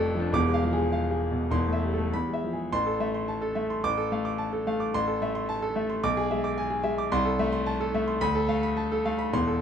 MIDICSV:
0, 0, Header, 1, 2, 480
1, 0, Start_track
1, 0, Key_signature, 0, "minor"
1, 0, Tempo, 593472
1, 272, Time_signature, 2, 2, 24, 8
1, 2202, Tempo, 562852
1, 2682, Tempo, 550459
1, 8201, End_track
2, 0, Start_track
2, 0, Title_t, "Grand piano"
2, 0, Program_c, 0, 0
2, 0, Control_c, 0, 64, 127
2, 0, Note_on_c, 0, 29, 115
2, 0, Note_on_c, 0, 41, 114
2, 0, Note_on_c, 0, 55, 80
2, 0, Note_on_c, 0, 57, 76
2, 0, Note_on_c, 0, 69, 92
2, 0, Note_on_c, 0, 74, 80
2, 0, Note_on_c, 0, 83, 127
2, 120, Note_on_c, 0, 53, 86
2, 158, Note_on_c, 0, 62, 82
2, 210, Note_off_c, 0, 69, 0
2, 238, Note_off_c, 0, 29, 0
2, 243, Note_off_c, 0, 41, 0
2, 263, Note_on_c, 0, 28, 107
2, 273, Note_off_c, 0, 53, 0
2, 273, Note_off_c, 0, 62, 0
2, 273, Note_on_c, 0, 86, 127
2, 275, Note_on_c, 0, 40, 104
2, 286, Control_c, 0, 64, 0
2, 287, Note_off_c, 0, 83, 0
2, 289, Note_off_c, 0, 55, 0
2, 289, Note_off_c, 0, 74, 0
2, 292, Note_off_c, 0, 57, 0
2, 394, Note_on_c, 0, 56, 78
2, 434, Control_c, 0, 64, 127
2, 435, Note_on_c, 0, 77, 89
2, 514, Note_on_c, 0, 53, 68
2, 522, Note_off_c, 0, 86, 0
2, 580, Note_off_c, 0, 56, 0
2, 589, Note_on_c, 0, 68, 87
2, 627, Note_on_c, 0, 56, 76
2, 628, Note_off_c, 0, 53, 0
2, 684, Note_off_c, 0, 77, 0
2, 747, Note_on_c, 0, 77, 79
2, 817, Note_off_c, 0, 56, 0
2, 841, Note_off_c, 0, 68, 0
2, 898, Note_on_c, 0, 68, 79
2, 1002, Note_off_c, 0, 77, 0
2, 1064, Note_on_c, 0, 47, 73
2, 1161, Note_off_c, 0, 68, 0
2, 1197, Note_off_c, 0, 28, 0
2, 1203, Note_off_c, 0, 40, 0
2, 1218, Note_on_c, 0, 28, 99
2, 1225, Note_on_c, 0, 84, 109
2, 1228, Note_on_c, 0, 40, 98
2, 1229, Note_off_c, 0, 47, 0
2, 1248, Control_c, 0, 64, 0
2, 1354, Note_on_c, 0, 57, 66
2, 1395, Note_on_c, 0, 76, 78
2, 1417, Control_c, 0, 64, 127
2, 1486, Note_on_c, 0, 55, 66
2, 1491, Note_off_c, 0, 84, 0
2, 1550, Note_off_c, 0, 57, 0
2, 1565, Note_on_c, 0, 69, 68
2, 1601, Note_on_c, 0, 57, 68
2, 1603, Note_off_c, 0, 55, 0
2, 1656, Note_off_c, 0, 76, 0
2, 1700, Note_off_c, 0, 28, 0
2, 1705, Note_off_c, 0, 40, 0
2, 1722, Note_off_c, 0, 57, 0
2, 1724, Note_off_c, 0, 69, 0
2, 1726, Note_on_c, 0, 83, 93
2, 1728, Note_on_c, 0, 40, 79
2, 1734, Control_c, 0, 64, 0
2, 1848, Note_on_c, 0, 56, 67
2, 1873, Control_c, 0, 64, 127
2, 1889, Note_on_c, 0, 76, 76
2, 1972, Note_on_c, 0, 53, 54
2, 1984, Note_off_c, 0, 83, 0
2, 2041, Note_off_c, 0, 56, 0
2, 2048, Note_on_c, 0, 68, 66
2, 2085, Note_on_c, 0, 56, 60
2, 2089, Note_off_c, 0, 53, 0
2, 2144, Note_off_c, 0, 76, 0
2, 2192, Note_off_c, 0, 40, 0
2, 2203, Note_off_c, 0, 56, 0
2, 2204, Note_off_c, 0, 68, 0
2, 2204, Note_on_c, 0, 33, 102
2, 2204, Note_on_c, 0, 84, 127
2, 2219, Control_c, 0, 64, 0
2, 2323, Note_on_c, 0, 69, 76
2, 2366, Control_c, 0, 64, 127
2, 2397, Note_off_c, 0, 84, 0
2, 2440, Note_on_c, 0, 57, 72
2, 2440, Note_on_c, 0, 76, 83
2, 2516, Note_off_c, 0, 69, 0
2, 2562, Note_on_c, 0, 84, 78
2, 2634, Note_off_c, 0, 57, 0
2, 2634, Note_off_c, 0, 76, 0
2, 2680, Note_on_c, 0, 81, 73
2, 2756, Note_off_c, 0, 84, 0
2, 2796, Note_on_c, 0, 69, 83
2, 2877, Note_off_c, 0, 81, 0
2, 2916, Note_on_c, 0, 76, 80
2, 2920, Note_on_c, 0, 57, 69
2, 2996, Note_off_c, 0, 69, 0
2, 3045, Note_on_c, 0, 84, 77
2, 3117, Note_off_c, 0, 76, 0
2, 3119, Note_off_c, 0, 57, 0
2, 3142, Note_off_c, 0, 33, 0
2, 3163, Note_on_c, 0, 33, 103
2, 3166, Note_on_c, 0, 86, 127
2, 3169, Note_off_c, 0, 84, 0
2, 3188, Control_c, 0, 64, 0
2, 3283, Note_on_c, 0, 69, 83
2, 3326, Control_c, 0, 64, 127
2, 3363, Note_off_c, 0, 86, 0
2, 3408, Note_on_c, 0, 57, 78
2, 3411, Note_on_c, 0, 77, 72
2, 3481, Note_off_c, 0, 69, 0
2, 3523, Note_on_c, 0, 86, 79
2, 3603, Note_off_c, 0, 57, 0
2, 3604, Note_off_c, 0, 77, 0
2, 3640, Note_on_c, 0, 81, 81
2, 3720, Note_off_c, 0, 86, 0
2, 3765, Note_on_c, 0, 69, 74
2, 3837, Note_off_c, 0, 81, 0
2, 3887, Note_on_c, 0, 57, 77
2, 3891, Note_on_c, 0, 77, 79
2, 3959, Note_off_c, 0, 69, 0
2, 4004, Note_on_c, 0, 86, 82
2, 4079, Note_off_c, 0, 57, 0
2, 4081, Note_off_c, 0, 77, 0
2, 4096, Note_off_c, 0, 33, 0
2, 4126, Note_off_c, 0, 86, 0
2, 4128, Note_on_c, 0, 84, 127
2, 4129, Note_on_c, 0, 33, 106
2, 4142, Control_c, 0, 64, 0
2, 4242, Note_on_c, 0, 69, 80
2, 4291, Control_c, 0, 64, 127
2, 4318, Note_off_c, 0, 84, 0
2, 4368, Note_on_c, 0, 57, 77
2, 4369, Note_on_c, 0, 76, 83
2, 4434, Note_off_c, 0, 69, 0
2, 4484, Note_on_c, 0, 84, 91
2, 4556, Note_off_c, 0, 57, 0
2, 4557, Note_off_c, 0, 76, 0
2, 4604, Note_on_c, 0, 81, 95
2, 4675, Note_off_c, 0, 84, 0
2, 4721, Note_on_c, 0, 69, 92
2, 4795, Note_off_c, 0, 81, 0
2, 4835, Note_on_c, 0, 57, 84
2, 4839, Note_on_c, 0, 76, 76
2, 4914, Note_off_c, 0, 69, 0
2, 4959, Note_on_c, 0, 84, 88
2, 5031, Note_off_c, 0, 57, 0
2, 5033, Note_off_c, 0, 76, 0
2, 5054, Note_off_c, 0, 33, 0
2, 5079, Note_on_c, 0, 35, 113
2, 5080, Note_off_c, 0, 84, 0
2, 5080, Note_on_c, 0, 86, 127
2, 5100, Control_c, 0, 64, 0
2, 5198, Note_on_c, 0, 68, 96
2, 5227, Control_c, 0, 64, 127
2, 5271, Note_off_c, 0, 86, 0
2, 5318, Note_on_c, 0, 76, 84
2, 5319, Note_on_c, 0, 56, 88
2, 5389, Note_off_c, 0, 68, 0
2, 5433, Note_on_c, 0, 86, 92
2, 5507, Note_off_c, 0, 76, 0
2, 5508, Note_off_c, 0, 56, 0
2, 5551, Note_on_c, 0, 80, 91
2, 5624, Note_off_c, 0, 86, 0
2, 5662, Note_on_c, 0, 68, 79
2, 5742, Note_off_c, 0, 80, 0
2, 5777, Note_on_c, 0, 76, 93
2, 5778, Note_on_c, 0, 56, 88
2, 5857, Note_off_c, 0, 68, 0
2, 5907, Note_on_c, 0, 86, 91
2, 5974, Note_off_c, 0, 56, 0
2, 5974, Note_off_c, 0, 76, 0
2, 5999, Note_off_c, 0, 35, 0
2, 6023, Note_on_c, 0, 36, 122
2, 6025, Note_on_c, 0, 84, 127
2, 6027, Note_off_c, 0, 86, 0
2, 6046, Control_c, 0, 64, 0
2, 6140, Note_on_c, 0, 69, 86
2, 6192, Control_c, 0, 64, 127
2, 6217, Note_off_c, 0, 84, 0
2, 6263, Note_on_c, 0, 76, 96
2, 6264, Note_on_c, 0, 57, 85
2, 6335, Note_off_c, 0, 69, 0
2, 6378, Note_on_c, 0, 84, 96
2, 6456, Note_off_c, 0, 76, 0
2, 6457, Note_off_c, 0, 57, 0
2, 6500, Note_on_c, 0, 81, 99
2, 6574, Note_off_c, 0, 84, 0
2, 6624, Note_on_c, 0, 69, 87
2, 6694, Note_off_c, 0, 81, 0
2, 6744, Note_on_c, 0, 57, 86
2, 6746, Note_on_c, 0, 76, 84
2, 6815, Note_off_c, 0, 69, 0
2, 6859, Note_on_c, 0, 84, 83
2, 6935, Note_off_c, 0, 57, 0
2, 6936, Note_off_c, 0, 76, 0
2, 6952, Note_off_c, 0, 36, 0
2, 6977, Note_on_c, 0, 83, 127
2, 6979, Note_on_c, 0, 38, 121
2, 6981, Note_off_c, 0, 84, 0
2, 6999, Control_c, 0, 64, 0
2, 7099, Note_on_c, 0, 69, 90
2, 7155, Control_c, 0, 64, 127
2, 7173, Note_off_c, 0, 83, 0
2, 7212, Note_on_c, 0, 57, 72
2, 7217, Note_on_c, 0, 77, 89
2, 7294, Note_off_c, 0, 69, 0
2, 7343, Note_on_c, 0, 83, 89
2, 7412, Note_off_c, 0, 57, 0
2, 7415, Note_off_c, 0, 77, 0
2, 7463, Note_on_c, 0, 81, 85
2, 7539, Note_off_c, 0, 83, 0
2, 7593, Note_on_c, 0, 69, 89
2, 7660, Note_off_c, 0, 81, 0
2, 7712, Note_on_c, 0, 77, 84
2, 7714, Note_on_c, 0, 57, 81
2, 7787, Note_off_c, 0, 69, 0
2, 7828, Note_on_c, 0, 83, 87
2, 7908, Note_off_c, 0, 77, 0
2, 7909, Note_off_c, 0, 57, 0
2, 7925, Note_off_c, 0, 38, 0
2, 7950, Note_on_c, 0, 28, 98
2, 7954, Note_off_c, 0, 83, 0
2, 7954, Note_on_c, 0, 40, 107
2, 7957, Note_on_c, 0, 84, 127
2, 7971, Control_c, 0, 64, 0
2, 8079, Note_on_c, 0, 69, 79
2, 8123, Control_c, 0, 64, 127
2, 8155, Note_off_c, 0, 84, 0
2, 8201, Note_off_c, 0, 28, 0
2, 8201, Note_off_c, 0, 40, 0
2, 8201, Note_off_c, 0, 69, 0
2, 8201, End_track
0, 0, End_of_file